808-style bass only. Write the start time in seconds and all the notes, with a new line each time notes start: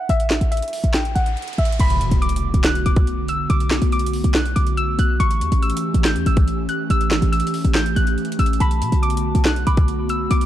0.09 A1
0.41 A1
0.84 A1
1.16 A1
1.58 A1
1.80 B1
2.01 B2
2.11 B1
2.54 B1
2.86 B1
3.50 B1
3.82 B1
4.24 B1
4.56 B1
4.99 B1
5.20 A1
5.41 E2
5.52 A1
5.94 A1
6.16 E2
6.26 A1
6.90 A1
7.22 A1
7.65 A1
7.96 A1
8.39 A1
8.60 B1
8.82 B2
8.92 B1
9.35 B1
9.67 B1
10.31 B1